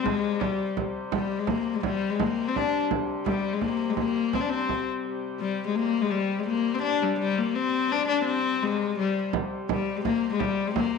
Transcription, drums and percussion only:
0, 0, Header, 1, 2, 480
1, 0, Start_track
1, 0, Tempo, 357122
1, 1024, Time_signature, 3, 2, 24, 8
1, 14761, End_track
2, 0, Start_track
2, 0, Title_t, "Frame drum"
2, 75, Note_on_c, 9, 64, 72
2, 209, Note_off_c, 9, 64, 0
2, 323, Note_on_c, 9, 64, 26
2, 457, Note_off_c, 9, 64, 0
2, 552, Note_on_c, 9, 64, 69
2, 686, Note_off_c, 9, 64, 0
2, 799, Note_on_c, 9, 64, 22
2, 933, Note_off_c, 9, 64, 0
2, 1035, Note_on_c, 9, 64, 65
2, 1169, Note_off_c, 9, 64, 0
2, 1506, Note_on_c, 9, 64, 79
2, 1640, Note_off_c, 9, 64, 0
2, 1979, Note_on_c, 9, 64, 74
2, 2113, Note_off_c, 9, 64, 0
2, 2464, Note_on_c, 9, 64, 71
2, 2598, Note_off_c, 9, 64, 0
2, 2952, Note_on_c, 9, 64, 74
2, 3086, Note_off_c, 9, 64, 0
2, 3442, Note_on_c, 9, 64, 65
2, 3577, Note_off_c, 9, 64, 0
2, 3910, Note_on_c, 9, 64, 70
2, 4044, Note_off_c, 9, 64, 0
2, 4384, Note_on_c, 9, 64, 67
2, 4518, Note_off_c, 9, 64, 0
2, 4858, Note_on_c, 9, 64, 53
2, 4993, Note_off_c, 9, 64, 0
2, 5334, Note_on_c, 9, 64, 63
2, 5468, Note_off_c, 9, 64, 0
2, 5824, Note_on_c, 9, 64, 64
2, 5958, Note_off_c, 9, 64, 0
2, 6303, Note_on_c, 9, 64, 58
2, 6438, Note_off_c, 9, 64, 0
2, 12545, Note_on_c, 9, 64, 79
2, 12680, Note_off_c, 9, 64, 0
2, 13029, Note_on_c, 9, 64, 81
2, 13163, Note_off_c, 9, 64, 0
2, 13509, Note_on_c, 9, 64, 72
2, 13643, Note_off_c, 9, 64, 0
2, 13982, Note_on_c, 9, 64, 73
2, 14116, Note_off_c, 9, 64, 0
2, 14459, Note_on_c, 9, 64, 77
2, 14594, Note_off_c, 9, 64, 0
2, 14761, End_track
0, 0, End_of_file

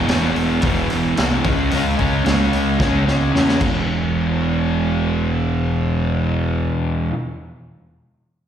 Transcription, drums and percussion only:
0, 0, Header, 1, 2, 480
1, 0, Start_track
1, 0, Key_signature, 4, "major"
1, 0, Tempo, 539568
1, 1525, Time_signature, 4, 2, 24, 8
1, 7543, End_track
2, 0, Start_track
2, 0, Title_t, "Drums"
2, 75, Note_on_c, 9, 46, 71
2, 84, Note_on_c, 9, 38, 102
2, 164, Note_off_c, 9, 46, 0
2, 173, Note_off_c, 9, 38, 0
2, 320, Note_on_c, 9, 46, 48
2, 409, Note_off_c, 9, 46, 0
2, 548, Note_on_c, 9, 46, 85
2, 562, Note_on_c, 9, 36, 106
2, 637, Note_off_c, 9, 46, 0
2, 651, Note_off_c, 9, 36, 0
2, 799, Note_on_c, 9, 46, 55
2, 888, Note_off_c, 9, 46, 0
2, 1043, Note_on_c, 9, 46, 73
2, 1052, Note_on_c, 9, 38, 107
2, 1132, Note_off_c, 9, 46, 0
2, 1141, Note_off_c, 9, 38, 0
2, 1283, Note_on_c, 9, 46, 57
2, 1287, Note_on_c, 9, 36, 113
2, 1372, Note_off_c, 9, 46, 0
2, 1376, Note_off_c, 9, 36, 0
2, 1524, Note_on_c, 9, 46, 72
2, 1613, Note_off_c, 9, 46, 0
2, 1768, Note_on_c, 9, 46, 51
2, 1771, Note_on_c, 9, 36, 71
2, 1857, Note_off_c, 9, 46, 0
2, 1860, Note_off_c, 9, 36, 0
2, 2008, Note_on_c, 9, 46, 62
2, 2017, Note_on_c, 9, 38, 87
2, 2097, Note_off_c, 9, 46, 0
2, 2106, Note_off_c, 9, 38, 0
2, 2250, Note_on_c, 9, 46, 50
2, 2339, Note_off_c, 9, 46, 0
2, 2491, Note_on_c, 9, 36, 116
2, 2495, Note_on_c, 9, 38, 65
2, 2579, Note_off_c, 9, 36, 0
2, 2584, Note_off_c, 9, 38, 0
2, 2739, Note_on_c, 9, 38, 68
2, 2828, Note_off_c, 9, 38, 0
2, 2983, Note_on_c, 9, 38, 82
2, 3072, Note_off_c, 9, 38, 0
2, 3100, Note_on_c, 9, 38, 67
2, 3189, Note_off_c, 9, 38, 0
2, 3209, Note_on_c, 9, 49, 82
2, 3211, Note_on_c, 9, 36, 103
2, 3298, Note_off_c, 9, 49, 0
2, 3300, Note_off_c, 9, 36, 0
2, 7543, End_track
0, 0, End_of_file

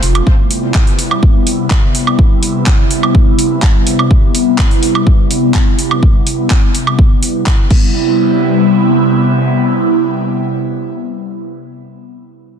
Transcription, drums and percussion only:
0, 0, Header, 1, 2, 480
1, 0, Start_track
1, 0, Key_signature, 0, "major"
1, 0, Tempo, 480000
1, 266, Time_signature, 4, 2, 24, 8
1, 12595, End_track
2, 0, Start_track
2, 0, Title_t, "Drums"
2, 26, Note_on_c, 9, 46, 110
2, 126, Note_off_c, 9, 46, 0
2, 151, Note_on_c, 9, 42, 53
2, 151, Note_on_c, 9, 76, 79
2, 251, Note_off_c, 9, 42, 0
2, 251, Note_off_c, 9, 76, 0
2, 267, Note_on_c, 9, 36, 112
2, 367, Note_off_c, 9, 36, 0
2, 505, Note_on_c, 9, 46, 105
2, 605, Note_off_c, 9, 46, 0
2, 743, Note_on_c, 9, 39, 112
2, 747, Note_on_c, 9, 36, 118
2, 843, Note_off_c, 9, 39, 0
2, 847, Note_off_c, 9, 36, 0
2, 872, Note_on_c, 9, 46, 59
2, 972, Note_off_c, 9, 46, 0
2, 986, Note_on_c, 9, 46, 100
2, 1086, Note_off_c, 9, 46, 0
2, 1112, Note_on_c, 9, 76, 78
2, 1212, Note_off_c, 9, 76, 0
2, 1227, Note_on_c, 9, 36, 119
2, 1327, Note_off_c, 9, 36, 0
2, 1467, Note_on_c, 9, 46, 102
2, 1567, Note_off_c, 9, 46, 0
2, 1704, Note_on_c, 9, 39, 108
2, 1707, Note_on_c, 9, 36, 117
2, 1804, Note_off_c, 9, 39, 0
2, 1807, Note_off_c, 9, 36, 0
2, 1947, Note_on_c, 9, 46, 108
2, 2047, Note_off_c, 9, 46, 0
2, 2072, Note_on_c, 9, 76, 85
2, 2172, Note_off_c, 9, 76, 0
2, 2187, Note_on_c, 9, 36, 108
2, 2287, Note_off_c, 9, 36, 0
2, 2426, Note_on_c, 9, 46, 103
2, 2526, Note_off_c, 9, 46, 0
2, 2664, Note_on_c, 9, 39, 111
2, 2667, Note_on_c, 9, 36, 114
2, 2764, Note_off_c, 9, 39, 0
2, 2767, Note_off_c, 9, 36, 0
2, 2906, Note_on_c, 9, 46, 96
2, 3006, Note_off_c, 9, 46, 0
2, 3032, Note_on_c, 9, 76, 82
2, 3132, Note_off_c, 9, 76, 0
2, 3147, Note_on_c, 9, 36, 107
2, 3247, Note_off_c, 9, 36, 0
2, 3386, Note_on_c, 9, 46, 97
2, 3486, Note_off_c, 9, 46, 0
2, 3624, Note_on_c, 9, 39, 103
2, 3627, Note_on_c, 9, 36, 118
2, 3627, Note_on_c, 9, 46, 55
2, 3724, Note_off_c, 9, 39, 0
2, 3727, Note_off_c, 9, 36, 0
2, 3727, Note_off_c, 9, 46, 0
2, 3866, Note_on_c, 9, 46, 106
2, 3966, Note_off_c, 9, 46, 0
2, 3992, Note_on_c, 9, 76, 80
2, 4092, Note_off_c, 9, 76, 0
2, 4107, Note_on_c, 9, 36, 105
2, 4207, Note_off_c, 9, 36, 0
2, 4346, Note_on_c, 9, 46, 99
2, 4446, Note_off_c, 9, 46, 0
2, 4583, Note_on_c, 9, 39, 117
2, 4587, Note_on_c, 9, 36, 113
2, 4683, Note_off_c, 9, 39, 0
2, 4687, Note_off_c, 9, 36, 0
2, 4711, Note_on_c, 9, 46, 57
2, 4811, Note_off_c, 9, 46, 0
2, 4826, Note_on_c, 9, 46, 93
2, 4926, Note_off_c, 9, 46, 0
2, 4951, Note_on_c, 9, 76, 84
2, 5051, Note_off_c, 9, 76, 0
2, 5067, Note_on_c, 9, 36, 109
2, 5167, Note_off_c, 9, 36, 0
2, 5306, Note_on_c, 9, 46, 94
2, 5406, Note_off_c, 9, 46, 0
2, 5543, Note_on_c, 9, 39, 108
2, 5547, Note_on_c, 9, 36, 109
2, 5643, Note_off_c, 9, 39, 0
2, 5647, Note_off_c, 9, 36, 0
2, 5786, Note_on_c, 9, 46, 101
2, 5886, Note_off_c, 9, 46, 0
2, 5911, Note_on_c, 9, 76, 84
2, 6011, Note_off_c, 9, 76, 0
2, 6027, Note_on_c, 9, 36, 104
2, 6127, Note_off_c, 9, 36, 0
2, 6266, Note_on_c, 9, 46, 99
2, 6366, Note_off_c, 9, 46, 0
2, 6503, Note_on_c, 9, 39, 119
2, 6506, Note_on_c, 9, 36, 113
2, 6603, Note_off_c, 9, 39, 0
2, 6606, Note_off_c, 9, 36, 0
2, 6746, Note_on_c, 9, 46, 90
2, 6846, Note_off_c, 9, 46, 0
2, 6871, Note_on_c, 9, 76, 84
2, 6971, Note_off_c, 9, 76, 0
2, 6986, Note_on_c, 9, 36, 109
2, 7086, Note_off_c, 9, 36, 0
2, 7225, Note_on_c, 9, 46, 98
2, 7325, Note_off_c, 9, 46, 0
2, 7463, Note_on_c, 9, 39, 115
2, 7466, Note_on_c, 9, 36, 110
2, 7466, Note_on_c, 9, 46, 54
2, 7563, Note_off_c, 9, 39, 0
2, 7566, Note_off_c, 9, 36, 0
2, 7566, Note_off_c, 9, 46, 0
2, 7705, Note_on_c, 9, 49, 83
2, 7706, Note_on_c, 9, 36, 106
2, 7805, Note_off_c, 9, 49, 0
2, 7806, Note_off_c, 9, 36, 0
2, 12595, End_track
0, 0, End_of_file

